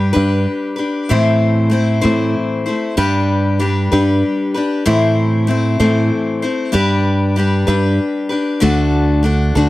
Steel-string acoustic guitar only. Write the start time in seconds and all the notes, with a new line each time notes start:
Already playing: G3 D4 G4 B4
0.13 G3 D4 G4 B4
0.76 D4 G4 B4
1.09 A2 E3 A3 C4 E4 C5
1.70 A3 C4 E4 C5
2.01 A2 E3 A3 C4 E4 C5
2.66 A3 C4 E4 C5
2.97 G3 D4 G4 B4
3.59 G3 D4 G4 B4
3.92 G3 D4 G4 B4
4.54 D4 G4 B4
4.86 A2 E3 A3 C4 E4 C5
5.47 A3 C4 E4 C5
5.80 A2 E3 A3 C4 E4 C5
6.42 A3 C4 E4 C5
6.72 G3 D4 G4 B4
7.36 G3 D4 G4 B4
7.67 G3 D4 G4 B4
8.29 D4 G4 B4
8.60 D3 A3 D4 F#4 A4
9.23 A3 D4 F#4 A4
9.55 D3 A3 D4 F#4 A4